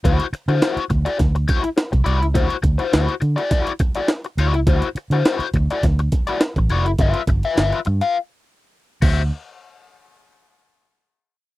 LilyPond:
<<
  \new Staff \with { instrumentName = "Overdriven electric guitar" } { \time 4/4 \key d \mixolydian \tempo 4 = 103 <e' fis' c''>16 r8 <e' fis' c''>16 <e' fis' c''>16 r8 <e' fis' d''>16 r8 <e' fis' c''>16 r8. <e' fis' d''>16 r16 | <e' fis' c''>16 r8 <e' fis' c''>16 <e' fis' c''>16 r8 <e' fis' d''>16 <e' fis' d''>16 r8 <e' fis' d''>16 r8 <e' fis' d''>16 r16 | <e' fis' c''>16 r8 <e' fis' c''>16 <e' fis' c''>16 r8 <e' fis' d''>16 r8. <e' fis' d''>16 r8 <e' fis' d''>16 r16 | <f' b' e''>16 r8 <f' b' e''>16 <f' b' e''>16 r8 <f' b' f''>16 r4. <fis' c'' e''>16 r16 |
r1 | }
  \new Staff \with { instrumentName = "Fingered electric bass" } { \clef bass \time 4/4 \key d \mixolydian d,16 r8 d16 r8 d,16 r16 d,8 r8. c,16 c,16 cis,16 | d,16 r16 d,16 r16 d,16 r16 d16 r4. r16 d,16 cis,16 | d,16 r8 d16 r8 d,16 r16 d,8 r8. a,,16 f,,16 fis,,16 | g,,16 r16 g,,16 r16 g,,16 r16 g,16 r4. r16 d,8 |
r1 | }
  \new DrumStaff \with { instrumentName = "Drums" } \drummode { \time 4/4 <hh bd>16 hh16 hh16 hh16 <hh sn>16 hh16 <hh bd>16 hh16 <hh bd sn>16 hh16 <hh bd>16 hh16 <hh sn>16 <hh bd>16 hh16 hh16 | <hh bd>16 hh16 <hh bd>16 hh16 <hh sn>16 hh16 hh16 hh16 <hh bd sn>16 hh16 <hh bd>16 hh16 <hh sn>16 hh16 hh16 hh16 | <hh bd>16 hh16 hh16 hh16 <hh sn>16 hh16 <hh bd>16 hh16 <hh bd sn>16 hh16 <hh bd>16 hh16 <hh sn>16 <hh bd>16 hh16 hh16 | <hh bd>16 hh16 <hh bd>16 hh16 <hh sn>16 hh16 hh16 hh16 r4 r8 <cymc bd>8 |
r4 r4 r4 r4 | }
>>